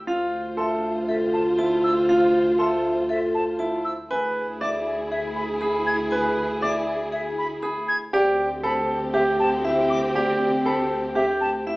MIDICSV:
0, 0, Header, 1, 7, 480
1, 0, Start_track
1, 0, Tempo, 504202
1, 69, Time_signature, 4, 2, 24, 8
1, 11201, End_track
2, 0, Start_track
2, 0, Title_t, "Flute"
2, 0, Program_c, 0, 73
2, 543, Note_on_c, 0, 84, 47
2, 634, Note_off_c, 0, 84, 0
2, 1027, Note_on_c, 0, 76, 55
2, 1118, Note_off_c, 0, 76, 0
2, 1269, Note_on_c, 0, 81, 59
2, 1359, Note_off_c, 0, 81, 0
2, 1751, Note_on_c, 0, 88, 59
2, 1840, Note_off_c, 0, 88, 0
2, 2466, Note_on_c, 0, 84, 54
2, 2557, Note_off_c, 0, 84, 0
2, 2945, Note_on_c, 0, 76, 58
2, 3035, Note_off_c, 0, 76, 0
2, 3185, Note_on_c, 0, 81, 59
2, 3275, Note_off_c, 0, 81, 0
2, 3662, Note_on_c, 0, 88, 59
2, 3753, Note_off_c, 0, 88, 0
2, 4386, Note_on_c, 0, 86, 60
2, 4476, Note_off_c, 0, 86, 0
2, 4868, Note_on_c, 0, 76, 62
2, 4958, Note_off_c, 0, 76, 0
2, 5102, Note_on_c, 0, 83, 61
2, 5193, Note_off_c, 0, 83, 0
2, 5584, Note_on_c, 0, 92, 66
2, 5675, Note_off_c, 0, 92, 0
2, 6305, Note_on_c, 0, 86, 64
2, 6396, Note_off_c, 0, 86, 0
2, 6785, Note_on_c, 0, 76, 62
2, 6875, Note_off_c, 0, 76, 0
2, 7030, Note_on_c, 0, 83, 69
2, 7119, Note_off_c, 0, 83, 0
2, 7505, Note_on_c, 0, 92, 70
2, 7596, Note_off_c, 0, 92, 0
2, 8225, Note_on_c, 0, 83, 63
2, 8316, Note_off_c, 0, 83, 0
2, 8703, Note_on_c, 0, 76, 67
2, 8794, Note_off_c, 0, 76, 0
2, 8945, Note_on_c, 0, 81, 70
2, 9036, Note_off_c, 0, 81, 0
2, 9425, Note_on_c, 0, 86, 69
2, 9516, Note_off_c, 0, 86, 0
2, 10146, Note_on_c, 0, 83, 61
2, 10237, Note_off_c, 0, 83, 0
2, 10623, Note_on_c, 0, 76, 68
2, 10714, Note_off_c, 0, 76, 0
2, 10861, Note_on_c, 0, 81, 67
2, 10953, Note_off_c, 0, 81, 0
2, 11201, End_track
3, 0, Start_track
3, 0, Title_t, "Vibraphone"
3, 0, Program_c, 1, 11
3, 77, Note_on_c, 1, 77, 67
3, 384, Note_off_c, 1, 77, 0
3, 555, Note_on_c, 1, 76, 53
3, 863, Note_off_c, 1, 76, 0
3, 1034, Note_on_c, 1, 69, 58
3, 1343, Note_off_c, 1, 69, 0
3, 1510, Note_on_c, 1, 81, 73
3, 1821, Note_off_c, 1, 81, 0
3, 1992, Note_on_c, 1, 77, 65
3, 2302, Note_off_c, 1, 77, 0
3, 2471, Note_on_c, 1, 76, 55
3, 2782, Note_off_c, 1, 76, 0
3, 2943, Note_on_c, 1, 69, 63
3, 3259, Note_off_c, 1, 69, 0
3, 3418, Note_on_c, 1, 81, 70
3, 3737, Note_off_c, 1, 81, 0
3, 3910, Note_on_c, 1, 80, 71
3, 4221, Note_off_c, 1, 80, 0
3, 4389, Note_on_c, 1, 76, 59
3, 4701, Note_off_c, 1, 76, 0
3, 4871, Note_on_c, 1, 68, 69
3, 5182, Note_off_c, 1, 68, 0
3, 5338, Note_on_c, 1, 83, 82
3, 5657, Note_off_c, 1, 83, 0
3, 5816, Note_on_c, 1, 80, 76
3, 6136, Note_off_c, 1, 80, 0
3, 6300, Note_on_c, 1, 76, 65
3, 6618, Note_off_c, 1, 76, 0
3, 6781, Note_on_c, 1, 68, 76
3, 7098, Note_off_c, 1, 68, 0
3, 7259, Note_on_c, 1, 83, 82
3, 7577, Note_off_c, 1, 83, 0
3, 7748, Note_on_c, 1, 74, 83
3, 8060, Note_off_c, 1, 74, 0
3, 8226, Note_on_c, 1, 72, 67
3, 8540, Note_off_c, 1, 72, 0
3, 8700, Note_on_c, 1, 67, 75
3, 9018, Note_off_c, 1, 67, 0
3, 9183, Note_on_c, 1, 76, 84
3, 9499, Note_off_c, 1, 76, 0
3, 9671, Note_on_c, 1, 74, 72
3, 9982, Note_off_c, 1, 74, 0
3, 10152, Note_on_c, 1, 72, 68
3, 10462, Note_off_c, 1, 72, 0
3, 10620, Note_on_c, 1, 67, 73
3, 10938, Note_off_c, 1, 67, 0
3, 11110, Note_on_c, 1, 76, 76
3, 11201, Note_off_c, 1, 76, 0
3, 11201, End_track
4, 0, Start_track
4, 0, Title_t, "Grand piano"
4, 0, Program_c, 2, 0
4, 69, Note_on_c, 2, 65, 67
4, 381, Note_off_c, 2, 65, 0
4, 545, Note_on_c, 2, 69, 64
4, 859, Note_off_c, 2, 69, 0
4, 1507, Note_on_c, 2, 64, 51
4, 1820, Note_off_c, 2, 64, 0
4, 1988, Note_on_c, 2, 65, 67
4, 2301, Note_off_c, 2, 65, 0
4, 2462, Note_on_c, 2, 69, 61
4, 2778, Note_off_c, 2, 69, 0
4, 3423, Note_on_c, 2, 64, 57
4, 3739, Note_off_c, 2, 64, 0
4, 3909, Note_on_c, 2, 71, 80
4, 4221, Note_off_c, 2, 71, 0
4, 4390, Note_on_c, 2, 74, 77
4, 4701, Note_off_c, 2, 74, 0
4, 5347, Note_on_c, 2, 68, 63
4, 5660, Note_off_c, 2, 68, 0
4, 5825, Note_on_c, 2, 71, 82
4, 6140, Note_off_c, 2, 71, 0
4, 6306, Note_on_c, 2, 74, 78
4, 6620, Note_off_c, 2, 74, 0
4, 7261, Note_on_c, 2, 68, 65
4, 7578, Note_off_c, 2, 68, 0
4, 7742, Note_on_c, 2, 67, 85
4, 8058, Note_off_c, 2, 67, 0
4, 8220, Note_on_c, 2, 69, 82
4, 8538, Note_off_c, 2, 69, 0
4, 8698, Note_on_c, 2, 67, 71
4, 9017, Note_off_c, 2, 67, 0
4, 9184, Note_on_c, 2, 64, 69
4, 9499, Note_off_c, 2, 64, 0
4, 9665, Note_on_c, 2, 67, 85
4, 9980, Note_off_c, 2, 67, 0
4, 10144, Note_on_c, 2, 69, 71
4, 10459, Note_off_c, 2, 69, 0
4, 10622, Note_on_c, 2, 67, 67
4, 10938, Note_off_c, 2, 67, 0
4, 11106, Note_on_c, 2, 64, 63
4, 11201, Note_off_c, 2, 64, 0
4, 11201, End_track
5, 0, Start_track
5, 0, Title_t, "French horn"
5, 0, Program_c, 3, 60
5, 71, Note_on_c, 3, 65, 61
5, 3632, Note_off_c, 3, 65, 0
5, 3908, Note_on_c, 3, 68, 70
5, 7470, Note_off_c, 3, 68, 0
5, 7750, Note_on_c, 3, 67, 74
5, 11201, Note_off_c, 3, 67, 0
5, 11201, End_track
6, 0, Start_track
6, 0, Title_t, "Violin section"
6, 0, Program_c, 4, 48
6, 71, Note_on_c, 4, 65, 58
6, 73, Note_on_c, 4, 72, 60
6, 3632, Note_off_c, 4, 65, 0
6, 3633, Note_off_c, 4, 72, 0
6, 3910, Note_on_c, 4, 64, 66
6, 3911, Note_on_c, 4, 68, 67
6, 7471, Note_off_c, 4, 64, 0
6, 7472, Note_off_c, 4, 68, 0
6, 7750, Note_on_c, 4, 60, 78
6, 7751, Note_on_c, 4, 67, 70
6, 11201, Note_off_c, 4, 60, 0
6, 11201, Note_off_c, 4, 67, 0
6, 11201, End_track
7, 0, Start_track
7, 0, Title_t, "Double bass section"
7, 0, Program_c, 5, 48
7, 70, Note_on_c, 5, 38, 62
7, 3775, Note_off_c, 5, 38, 0
7, 3904, Note_on_c, 5, 38, 64
7, 7612, Note_off_c, 5, 38, 0
7, 7744, Note_on_c, 5, 38, 75
7, 11201, Note_off_c, 5, 38, 0
7, 11201, End_track
0, 0, End_of_file